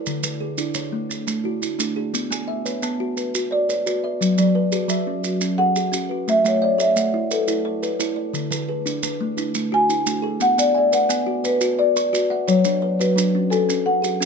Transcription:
Already playing: A4 D5
0.06 D3, maracas
0.23 D3 B4, maracas
0.40 G#4
0.58 D4 E4, maracas
0.74 D3 C#5, maracas
0.92 A3
1.10 D4, maracas
1.27 A3, maracas
1.44 E4 F#4
1.62 E4, maracas
1.79 A3 D4, maracas
1.96 D4 G#4
2.14 B3, maracas
2.30 B3 G#5, maracas
2.48 E5
2.66 B4 C#5, maracas
2.82 B3 A5, maracas
3.00 F#4
3.17 B4, maracas
3.35 F#4, maracas
3.51 C#5 D5
3.69 B4 C#5, maracas
3.86 F#4 B4, maracas
4.04 B4 E5
4.21 F#3, maracas
4.38 F#3 D5, maracas
4.55 B4
4.72 F#4 G#4, maracas
4.88 F#3 E5, maracas
5.07 C#4
5.24 F#4, maracas
5.41 C#4, maracas
5.58 G#4 A4 F#5
5.76 F#4 G#4, maracas
5.92 C#4 F#4, maracas
6.09 F#4 B4
6.28 A3 E5, maracas
6.44 A3 C#5 F#5, maracas
6.62 C#5 D5 F#5
6.78 A4 E5, maracas
6.96 A3 F#5, maracas
7.14 E4
7.31 A4 B4, maracas
7.48 E4, maracas
7.65 C#5
7.83 A4 B4, maracas
7.99 E4 A4, maracas
8.16 D5
8.33 D3, maracas
8.51 D3 B4, maracas
8.69 G#4 B4
8.86 D4, maracas
9.03 D3 B4, maracas
9.21 A3
9.37 D4 E4, maracas
9.55 A3, maracas
9.72 F#4 G#5
9.89 D4 E4, maracas
10.06 A3 D4, maracas
10.22 G#4 A4
10.40 B3 F#5, maracas
10.58 B3 D5 G#5, maracas
10.75 D5 E5 G#5
10.92 B4 F#5, maracas
11.09 B3 G#5, maracas
11.27 F#4
11.44 B4 C#5, maracas
11.61 F#4, maracas
11.79 D5
11.96 B4 C#6, maracas
12.13 F#4 B4, maracas
12.30 E5 F#5
12.48 F#3 C#5, maracas
12.65 F#3 D4, maracas
12.82 B4 D5
12.99 F#4 B4, maracas
13.16 F#3 D4, maracas
13.35 C#4
13.50 F#4 A4 G#5, maracas
13.69 C#4, maracas
13.85 A4 F#5
14.02 F#4 G#4, maracas
14.20 C#4 F#4, maracas

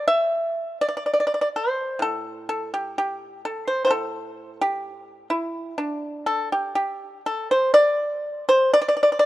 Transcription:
Already playing: G3
0.08 E5
0.81 D5
0.89 D5
0.97 D5
1.06 D5
1.14 D5
1.20 D5
1.27 D5
1.34 D5
1.41 D5
1.56 C5
1.99 A2 A4
2.49 A4
2.74 G4
2.98 G4
3.45 A4
3.68 C5
3.85 A2 C5
3.91 A4
4.61 G4
5.30 E4
5.78 D4
6.26 A4
6.52 G4
6.75 G4
7.26 A4
7.51 C5
7.74 D5
8.49 C5
8.73 D5
8.82 D5
8.88 D5
8.97 D5
9.03 D5
9.12 D5
9.19 D5

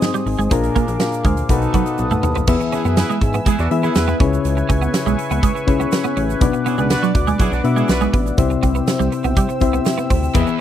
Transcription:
Already playing: G#2 C4 D#4 G#4 C5 D#5 G#5 D#6
0.02 G#2, snare, tambourine, shaker
0.14 G3, closed hi-hat, shaker
0.26 G#1, muted clean electric guitar stroke, open hi-hat
0.39 G#1 G#3, closed hi-hat, shaker
0.51 A#1 A#2 C4 D4 F4 G#4 A#4 F5 D6, kick, closed hi-hat, shaker
0.63 closed hi-hat, shaker
0.75 A#3, kick, closed hi-hat, shaker
0.88 A#1, muted clean electric guitar stroke, closed hi-hat, shaker
1.00 F4 A#4, snare, tambourine, shaker
1.12 closed hi-hat, shaker
1.24 D2 G#3 C5 F5, kick, closed hi-hat, shaker
1.37 closed hi-hat, shaker
1.49 B1 B2 D#4 F#4 A4 B4 F#5 A5 D#6, kick, closed hi-hat, shaker
1.62 closed hi-hat, shaker
1.74 F#3 D#4 F#4 A4 B4, kick, closed hi-hat, shaker
1.86 closed hi-hat, shaker
1.98 B1, high tom, shaker
2.11 A3, mid tom, shaker
2.23 D#2, muted clean electric guitar stroke, mid tom, shaker
2.35 B3, floor tom, shaker
2.47 E2 E3 B3 E4 G#4 B4 E5 G#5 E6, kick, crash, shaker
2.60 muted clean electric guitar stroke, shaker
2.72 B3 C#4 E4 G#4, closed hi-hat, shaker
2.85 F#2 B3 E4 G#4 B4, shaker
2.97 E4 G#4 B4, snare, closed hi-hat, tambourine, shaker
3.10 G#3, shaker
3.21 G#2, muted clean electric guitar stroke, kick, closed hi-hat, shaker
3.34 B3, closed hi-hat, shaker
3.46 G#3 B3 E4 G#4, kick, closed hi-hat, shaker
3.58 E2 B3 D4 F#4, muted clean electric guitar stroke, shaker
3.71 E3 B3 E4 G#4 B4 E5, closed hi-hat
3.83 B3 E4 G#4, shaker
3.95 E2 E4 G#4 B4, muted clean electric guitar stroke, snare, closed hi-hat, tambourine, shaker
4.08 B3, shaker
4.20 C#2 C#3 C#4 E4 G#4 B4 C#5 E5 C#6, kick, closed hi-hat
4.34 shaker
4.45 C#2, closed hi-hat, shaker
4.57 muted clean electric guitar stroke, shaker
4.69 C#2 C#4, kick, closed hi-hat, shaker
4.82 B3, shaker
4.94 snare, closed hi-hat, tambourine, shaker
5.06 B1 G#3, shaker
5.18 muted clean electric guitar stroke, closed hi-hat, shaker
5.31 C#2 B3, closed hi-hat, shaker
5.43 G#3, kick, closed hi-hat, shaker
5.55 muted clean electric guitar stroke, shaker
5.67 C#2 C#4 E4 G#4 B4 C#5, kick, closed hi-hat
5.80 B3, shaker
5.92 muted clean electric guitar stroke, snare, closed hi-hat, tambourine, shaker
6.04 B3, shaker
6.17 A1 C#4, closed hi-hat
6.30 shaker
6.41 B1 B2 B3 D4 F#4 B4 D5 F#5 D6, kick, closed hi-hat, shaker
6.53 muted clean electric guitar stroke, shaker
6.66 B3 C#4 E4 G#4, closed hi-hat, shaker
6.78 C#2 G#3 D4 F#4 B4, shaker
6.90 D4 F#4 B4, snare, closed hi-hat, tambourine, shaker
7.03 F#3, shaker
7.15 D2, muted clean electric guitar stroke, kick, closed hi-hat, shaker
7.27 G#3, closed hi-hat, shaker
7.40 F#3 C#4 E4 G#4, kick, closed hi-hat, shaker
7.52 B1 B3 D4 F#4, muted clean electric guitar stroke, shaker
7.64 B2 B3 D4 F#4 B4 E5, closed hi-hat
7.76 G#3 C#4 E4 G#4, shaker
7.88 B1 D4 F#4 B4, muted clean electric guitar stroke, snare, closed hi-hat, tambourine, shaker
8.01 G#3, shaker
8.13 A1 B3, kick, closed hi-hat
8.27 shaker
8.38 C2 C3 C4 E4 G4 C5 E5 G5 E6, kick, closed hi-hat, shaker
8.50 muted clean electric guitar stroke, shaker
8.63 C2 C4, kick, closed hi-hat, shaker
8.75 B3, shaker
8.87 snare, closed hi-hat, tambourine, shaker
8.99 C2 G3, shaker
9.12 muted clean electric guitar stroke, closed hi-hat, shaker
9.24 B1 B3, closed hi-hat, shaker
9.37 G3, kick, closed hi-hat, shaker
9.49 muted clean electric guitar stroke, shaker
9.61 C2 C4 E4 G4 C5 E5, kick, closed hi-hat, shaker
9.73 B3, shaker
9.85 muted clean electric guitar stroke, snare, closed hi-hat, tambourine, shaker
9.98 B3, shaker
10.10 D2 C4, kick, open hi-hat, shaker
10.23 shaker
10.34 E2 E3 B3 E4 G#4 B4 D#5 G#5, kick, closed hi-hat, shaker
10.41 E5
10.47 muted clean electric guitar stroke, shaker

